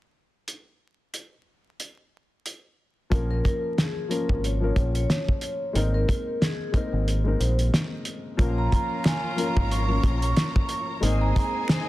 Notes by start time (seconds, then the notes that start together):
0.48 closed hi-hat
1.14 closed hi-hat
1.80 closed hi-hat
2.46 closed hi-hat
3.10 A#1 F3 A#3 C#4 F4 A#4, kick, closed hi-hat
3.31 A#4
3.45 A#4, kick, closed hi-hat
3.78 G#4, snare, closed hi-hat
4.08 F3 A#3 C#4 F4 A#4, closed hi-hat
4.29 G#1, kick
4.44 C#5, closed hi-hat
4.60 F3 A#3 C#4 F4 A#4
4.76 A#1, kick, closed hi-hat
4.95 C#5, closed hi-hat
5.10 snare, closed hi-hat
5.29 kick
5.41 closed hi-hat
5.73 G#1 G#3 A#3 C4 D#4 A#4, closed hi-hat
5.94 A#4
6.08 A#4, kick, closed hi-hat
6.41 G#4, snare, closed hi-hat
6.72 G#3 A#3 C4 D#4 A#4, kick, closed hi-hat
6.93 G#1
7.08 closed hi-hat
7.24 G#3 A#3 C4 D#4 A#4
7.40 A#1 C5, closed hi-hat
7.59 closed hi-hat
7.74 snare, closed hi-hat
8.05 closed hi-hat
8.37 A#1 F3 A#3 C#4 F4 A#4 C#5 A#5, kick, closed hi-hat
8.58 A#5
8.72 A#5, kick, closed hi-hat
9.04 G#5, finger snap, snare, closed hi-hat
9.36 F3 A#3 C#4 F4 A#4 A#5, closed hi-hat
9.57 G#1, kick
9.71 C#6, closed hi-hat
9.88 F3 A#3 C#4 F4 A#4
10.04 A#1, kick, closed hi-hat
10.22 C#6, closed hi-hat
10.37 finger snap, snare, closed hi-hat
10.56 kick
10.69 closed hi-hat
11.01 G#1 G#3 A#3 C4 D#4 G#4 A#4 C5 G#5, closed hi-hat
11.21 A#5
11.36 A#5, kick, closed hi-hat
11.68 finger snap, snare, closed hi-hat